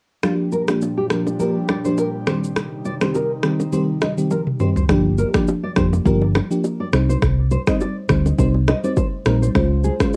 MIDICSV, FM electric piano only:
0, 0, Header, 1, 2, 480
1, 0, Start_track
1, 0, Tempo, 582524
1, 191, Time_signature, 4, 2, 24, 8
1, 8373, End_track
2, 0, Start_track
2, 0, Title_t, "FM electric piano"
2, 0, Program_c, 0, 5
2, 189, Note_on_c, 0, 53, 85
2, 191, Note_on_c, 0, 58, 77
2, 193, Note_on_c, 0, 62, 74
2, 195, Note_on_c, 0, 67, 89
2, 530, Note_off_c, 0, 53, 0
2, 531, Note_off_c, 0, 58, 0
2, 532, Note_off_c, 0, 62, 0
2, 533, Note_off_c, 0, 67, 0
2, 560, Note_on_c, 0, 53, 69
2, 562, Note_on_c, 0, 58, 65
2, 564, Note_on_c, 0, 62, 64
2, 565, Note_on_c, 0, 67, 80
2, 694, Note_off_c, 0, 53, 0
2, 695, Note_off_c, 0, 58, 0
2, 696, Note_off_c, 0, 62, 0
2, 697, Note_off_c, 0, 67, 0
2, 909, Note_on_c, 0, 53, 72
2, 911, Note_on_c, 0, 58, 65
2, 913, Note_on_c, 0, 62, 66
2, 914, Note_on_c, 0, 67, 80
2, 1062, Note_off_c, 0, 53, 0
2, 1063, Note_off_c, 0, 58, 0
2, 1064, Note_off_c, 0, 62, 0
2, 1065, Note_off_c, 0, 67, 0
2, 1150, Note_on_c, 0, 53, 84
2, 1152, Note_on_c, 0, 58, 76
2, 1153, Note_on_c, 0, 62, 76
2, 1155, Note_on_c, 0, 67, 96
2, 1303, Note_off_c, 0, 53, 0
2, 1304, Note_off_c, 0, 58, 0
2, 1304, Note_off_c, 0, 62, 0
2, 1305, Note_off_c, 0, 67, 0
2, 1521, Note_on_c, 0, 53, 73
2, 1523, Note_on_c, 0, 58, 67
2, 1525, Note_on_c, 0, 62, 67
2, 1527, Note_on_c, 0, 67, 78
2, 1655, Note_off_c, 0, 53, 0
2, 1656, Note_off_c, 0, 58, 0
2, 1657, Note_off_c, 0, 62, 0
2, 1658, Note_off_c, 0, 67, 0
2, 1869, Note_on_c, 0, 51, 73
2, 1871, Note_on_c, 0, 55, 63
2, 1873, Note_on_c, 0, 60, 65
2, 1874, Note_on_c, 0, 67, 78
2, 2022, Note_off_c, 0, 51, 0
2, 2023, Note_off_c, 0, 55, 0
2, 2024, Note_off_c, 0, 60, 0
2, 2025, Note_off_c, 0, 67, 0
2, 2482, Note_on_c, 0, 51, 72
2, 2484, Note_on_c, 0, 55, 65
2, 2485, Note_on_c, 0, 60, 66
2, 2487, Note_on_c, 0, 67, 80
2, 2615, Note_off_c, 0, 51, 0
2, 2616, Note_off_c, 0, 55, 0
2, 2617, Note_off_c, 0, 60, 0
2, 2618, Note_off_c, 0, 67, 0
2, 2828, Note_on_c, 0, 51, 73
2, 2830, Note_on_c, 0, 55, 66
2, 2831, Note_on_c, 0, 60, 65
2, 2833, Note_on_c, 0, 67, 81
2, 2982, Note_off_c, 0, 51, 0
2, 2983, Note_off_c, 0, 55, 0
2, 2983, Note_off_c, 0, 60, 0
2, 2984, Note_off_c, 0, 67, 0
2, 3068, Note_on_c, 0, 51, 86
2, 3070, Note_on_c, 0, 55, 79
2, 3071, Note_on_c, 0, 60, 78
2, 3073, Note_on_c, 0, 67, 97
2, 3222, Note_off_c, 0, 51, 0
2, 3223, Note_off_c, 0, 55, 0
2, 3223, Note_off_c, 0, 60, 0
2, 3224, Note_off_c, 0, 67, 0
2, 3439, Note_on_c, 0, 51, 72
2, 3442, Note_on_c, 0, 55, 65
2, 3443, Note_on_c, 0, 60, 66
2, 3444, Note_on_c, 0, 67, 79
2, 3574, Note_off_c, 0, 51, 0
2, 3575, Note_off_c, 0, 55, 0
2, 3576, Note_off_c, 0, 60, 0
2, 3576, Note_off_c, 0, 67, 0
2, 3788, Note_on_c, 0, 51, 74
2, 3789, Note_on_c, 0, 55, 63
2, 3791, Note_on_c, 0, 60, 66
2, 3793, Note_on_c, 0, 67, 77
2, 3942, Note_off_c, 0, 51, 0
2, 3943, Note_off_c, 0, 55, 0
2, 3943, Note_off_c, 0, 60, 0
2, 3944, Note_off_c, 0, 67, 0
2, 4027, Note_on_c, 0, 53, 95
2, 4029, Note_on_c, 0, 58, 82
2, 4031, Note_on_c, 0, 62, 85
2, 4033, Note_on_c, 0, 67, 103
2, 4370, Note_off_c, 0, 53, 0
2, 4370, Note_off_c, 0, 58, 0
2, 4371, Note_off_c, 0, 62, 0
2, 4372, Note_off_c, 0, 67, 0
2, 4400, Note_on_c, 0, 53, 78
2, 4401, Note_on_c, 0, 58, 69
2, 4403, Note_on_c, 0, 62, 70
2, 4404, Note_on_c, 0, 67, 82
2, 4534, Note_off_c, 0, 53, 0
2, 4535, Note_off_c, 0, 58, 0
2, 4536, Note_off_c, 0, 62, 0
2, 4537, Note_off_c, 0, 67, 0
2, 4748, Note_on_c, 0, 53, 74
2, 4750, Note_on_c, 0, 58, 70
2, 4751, Note_on_c, 0, 62, 70
2, 4753, Note_on_c, 0, 67, 83
2, 4902, Note_off_c, 0, 53, 0
2, 4903, Note_off_c, 0, 58, 0
2, 4903, Note_off_c, 0, 62, 0
2, 4904, Note_off_c, 0, 67, 0
2, 4987, Note_on_c, 0, 53, 95
2, 4989, Note_on_c, 0, 58, 85
2, 4990, Note_on_c, 0, 62, 82
2, 4992, Note_on_c, 0, 67, 98
2, 5141, Note_off_c, 0, 53, 0
2, 5142, Note_off_c, 0, 58, 0
2, 5143, Note_off_c, 0, 62, 0
2, 5144, Note_off_c, 0, 67, 0
2, 5360, Note_on_c, 0, 53, 74
2, 5361, Note_on_c, 0, 58, 70
2, 5363, Note_on_c, 0, 62, 71
2, 5365, Note_on_c, 0, 67, 80
2, 5494, Note_off_c, 0, 53, 0
2, 5495, Note_off_c, 0, 58, 0
2, 5496, Note_off_c, 0, 62, 0
2, 5497, Note_off_c, 0, 67, 0
2, 5707, Note_on_c, 0, 55, 74
2, 5710, Note_on_c, 0, 60, 71
2, 5711, Note_on_c, 0, 63, 71
2, 5713, Note_on_c, 0, 72, 82
2, 5862, Note_off_c, 0, 55, 0
2, 5863, Note_off_c, 0, 60, 0
2, 5863, Note_off_c, 0, 63, 0
2, 5864, Note_off_c, 0, 72, 0
2, 6320, Note_on_c, 0, 55, 75
2, 6321, Note_on_c, 0, 60, 70
2, 6323, Note_on_c, 0, 63, 68
2, 6325, Note_on_c, 0, 72, 82
2, 6454, Note_off_c, 0, 55, 0
2, 6455, Note_off_c, 0, 60, 0
2, 6456, Note_off_c, 0, 63, 0
2, 6457, Note_off_c, 0, 72, 0
2, 6666, Note_on_c, 0, 55, 78
2, 6669, Note_on_c, 0, 60, 70
2, 6670, Note_on_c, 0, 63, 70
2, 6671, Note_on_c, 0, 72, 86
2, 6821, Note_off_c, 0, 55, 0
2, 6822, Note_off_c, 0, 60, 0
2, 6823, Note_off_c, 0, 63, 0
2, 6823, Note_off_c, 0, 72, 0
2, 6907, Note_on_c, 0, 55, 86
2, 6909, Note_on_c, 0, 60, 79
2, 6911, Note_on_c, 0, 63, 85
2, 6912, Note_on_c, 0, 72, 100
2, 7061, Note_off_c, 0, 55, 0
2, 7062, Note_off_c, 0, 60, 0
2, 7063, Note_off_c, 0, 63, 0
2, 7064, Note_off_c, 0, 72, 0
2, 7280, Note_on_c, 0, 55, 77
2, 7281, Note_on_c, 0, 60, 70
2, 7283, Note_on_c, 0, 63, 69
2, 7285, Note_on_c, 0, 72, 84
2, 7414, Note_off_c, 0, 55, 0
2, 7415, Note_off_c, 0, 60, 0
2, 7416, Note_off_c, 0, 63, 0
2, 7417, Note_off_c, 0, 72, 0
2, 7627, Note_on_c, 0, 55, 79
2, 7629, Note_on_c, 0, 60, 71
2, 7630, Note_on_c, 0, 63, 69
2, 7632, Note_on_c, 0, 72, 85
2, 7781, Note_off_c, 0, 55, 0
2, 7782, Note_off_c, 0, 60, 0
2, 7783, Note_off_c, 0, 63, 0
2, 7784, Note_off_c, 0, 72, 0
2, 7868, Note_on_c, 0, 56, 92
2, 7869, Note_on_c, 0, 61, 81
2, 7870, Note_on_c, 0, 65, 82
2, 7872, Note_on_c, 0, 72, 99
2, 8210, Note_off_c, 0, 56, 0
2, 8210, Note_off_c, 0, 61, 0
2, 8211, Note_off_c, 0, 65, 0
2, 8212, Note_off_c, 0, 72, 0
2, 8239, Note_on_c, 0, 56, 75
2, 8241, Note_on_c, 0, 61, 69
2, 8242, Note_on_c, 0, 65, 71
2, 8244, Note_on_c, 0, 72, 81
2, 8373, Note_off_c, 0, 56, 0
2, 8373, Note_off_c, 0, 61, 0
2, 8373, Note_off_c, 0, 65, 0
2, 8373, Note_off_c, 0, 72, 0
2, 8373, End_track
0, 0, End_of_file